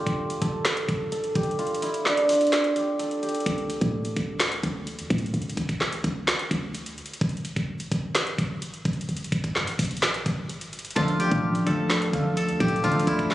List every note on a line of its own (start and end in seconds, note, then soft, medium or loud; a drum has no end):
0.00 1.11 D4 medium
0.00 1.58 F4 loud
0.00 1.35 G4 medium
0.00 0.41 A4 medium
0.07 0.40 G1 loud
0.07 kick medium
0.07 closed hi-hat medium
0.30 closed hi-hat medium
0.42 0.64 G1 loud
0.42 1.11 A4 medium
0.42 kick medium
0.42 closed hi-hat medium
0.65 snare loud
0.65 clap medium
0.65 closed hi-hat medium
0.77 closed hi-hat medium
0.89 1.11 G1 loud
0.89 kick loud
0.89 closed hi-hat medium
1.12 2.99 A4 medium
1.12 closed hi-hat medium
1.24 closed hi-hat medium
1.35 1.58 G1 loud
1.35 2.76 G4 medium
1.35 kick loud
1.35 closed hi-hat medium
1.43 closed hi-hat medium
1.51 closed hi-hat medium
1.59 1.89 F4 medium
1.59 closed hi-hat medium
1.67 closed hi-hat medium
1.74 closed hi-hat medium
1.82 2.35 E4 medium
1.82 closed hi-hat medium
1.94 closed hi-hat medium
2.06 4.86 D4 medium
2.06 snare medium
2.06 clap medium
2.17 closed hi-hat medium
2.29 4.81 F4 medium
2.29 closed hi-hat medium
2.29 open hi-hat medium
2.35 closed hi-hat medium
2.41 closed hi-hat medium
2.47 closed hi-hat medium
2.53 snare loud
2.53 clap medium
2.53 closed hi-hat medium
2.64 closed hi-hat medium
2.76 3.22 G4 medium
2.76 closed hi-hat medium
2.99 5.19 A4 medium
2.99 closed hi-hat medium
3.11 closed hi-hat medium
3.23 5.58 G4 medium
3.23 closed hi-hat medium
3.29 closed hi-hat medium
3.35 closed hi-hat medium
3.40 closed hi-hat medium
3.46 3.80 D2 loud
3.46 kick loud
3.46 closed hi-hat medium
3.58 closed hi-hat medium
3.70 closed hi-hat medium
3.81 4.15 A2 loud
3.81 kick medium
3.81 closed hi-hat medium
4.05 closed hi-hat medium
4.16 4.62 D2 loud
4.16 kick medium
4.16 closed hi-hat medium
4.40 snare loud
4.40 clap medium
4.40 closed hi-hat medium
4.52 closed hi-hat medium
4.63 5.00 D2 loud
4.63 kick loud
4.63 closed hi-hat medium
4.87 closed hi-hat medium
4.99 5.10 F2 loud
4.99 closed hi-hat medium
5.10 5.33 A2 loud
5.10 kick medium
5.10 closed hi-hat medium
5.18 closed hi-hat medium
5.26 closed hi-hat medium
5.34 5.56 D2 loud
5.34 closed hi-hat medium
5.42 closed hi-hat medium
5.50 closed hi-hat medium
5.57 6.02 D2 loud
5.57 kick medium
5.57 closed hi-hat medium
5.69 kick medium
5.69 closed hi-hat medium
5.81 snare medium
5.81 clap medium
5.92 closed hi-hat medium
6.04 6.27 D2 loud
6.04 kick medium
6.04 closed hi-hat medium
6.28 snare loud
6.28 clap medium
6.28 closed hi-hat medium
6.39 closed hi-hat medium
6.51 6.96 D2 loud
6.51 kick loud
6.51 closed hi-hat medium
6.75 closed hi-hat medium
6.86 closed hi-hat medium
6.98 closed hi-hat medium
7.06 closed hi-hat medium
7.14 closed hi-hat medium
7.21 7.55 G1 loud
7.21 kick loud
7.21 closed hi-hat medium
7.29 closed hi-hat medium
7.37 closed hi-hat medium
7.45 closed hi-hat medium
7.56 7.90 G1 loud
7.56 kick medium
7.56 closed hi-hat medium
7.80 closed hi-hat medium
7.92 8.14 G1 loud
7.92 kick medium
7.92 closed hi-hat medium
8.15 snare loud
8.15 clap loud
8.15 closed hi-hat medium
8.27 closed hi-hat medium
8.38 8.61 G1 loud
8.38 kick loud
8.38 closed hi-hat medium
8.62 closed hi-hat medium
8.74 closed hi-hat medium
8.85 9.08 G1 loud
8.85 kick loud
8.85 closed hi-hat medium
8.93 closed hi-hat medium
9.01 closed hi-hat medium
9.09 9.31 G1 loud
9.09 closed hi-hat medium
9.17 closed hi-hat medium
9.24 closed hi-hat medium
9.32 9.57 G1 loud
9.32 kick medium
9.32 closed hi-hat medium
9.44 kick medium
9.44 closed hi-hat medium
9.56 9.69 G2 loud
9.56 snare medium
9.56 clap medium
9.67 9.78 G1 medium
9.67 closed hi-hat medium
9.79 10.24 A#1 loud
9.79 kick medium
9.79 closed hi-hat medium
9.79 open hi-hat medium
9.85 closed hi-hat medium
9.91 closed hi-hat medium
9.97 closed hi-hat medium
10.03 snare loud
10.03 clap loud
10.03 closed hi-hat medium
10.14 closed hi-hat medium
10.26 10.93 G1 loud
10.26 kick loud
10.26 closed hi-hat medium
10.49 closed hi-hat medium
10.61 closed hi-hat medium
10.73 closed hi-hat medium
10.79 closed hi-hat medium
10.85 closed hi-hat medium
10.91 closed hi-hat medium
10.95 11.30 D2 loud
10.95 11.30 D3 medium
10.95 11.30 F3 medium
10.95 11.19 A3 medium
10.95 12.83 F4 loud
10.95 11.19 F4 loud
10.95 kick loud
10.95 closed hi-hat medium
11.08 closed hi-hat medium
11.20 12.60 G4 medium
11.20 closed hi-hat medium
11.31 11.65 A2 loud
11.31 11.65 D3 medium
11.31 11.65 F3 medium
11.31 11.54 A3 medium
11.31 11.54 F4 medium
11.31 kick medium
11.31 closed hi-hat medium
11.55 closed hi-hat medium
11.66 12.12 D2 loud
11.66 12.11 D3 medium
11.66 12.12 F3 medium
11.66 11.96 A3 medium
11.66 11.97 F4 medium
11.66 12.37 A4 medium
11.66 kick medium
11.66 closed hi-hat medium
11.90 snare loud
11.90 clap medium
11.90 closed hi-hat medium
12.02 closed hi-hat medium
12.12 12.50 D2 loud
12.12 12.82 D3 medium
12.12 12.82 F3 medium
12.12 12.58 A3 medium
12.12 12.58 F4 medium
12.12 kick loud
12.12 closed hi-hat medium
12.37 13.35 A4 medium
12.37 closed hi-hat medium
12.49 12.60 F2 loud
12.49 closed hi-hat medium
12.60 12.83 A2 loud
12.60 13.35 G4 medium
12.60 kick medium
12.60 closed hi-hat medium
12.68 closed hi-hat medium
12.76 closed hi-hat medium
12.83 13.06 D2 loud
12.83 13.35 D3 loud
12.83 13.35 F3 medium
12.83 13.28 A3 medium
12.83 13.13 F4 loud
12.83 13.28 F4 loud
12.83 closed hi-hat medium
12.92 closed hi-hat medium
12.99 closed hi-hat medium
13.07 13.35 D2 loud
13.07 13.35 E4 medium
13.07 kick medium
13.07 closed hi-hat medium
13.19 kick medium
13.19 closed hi-hat medium
13.31 13.35 D4 medium
13.31 snare medium
13.31 clap medium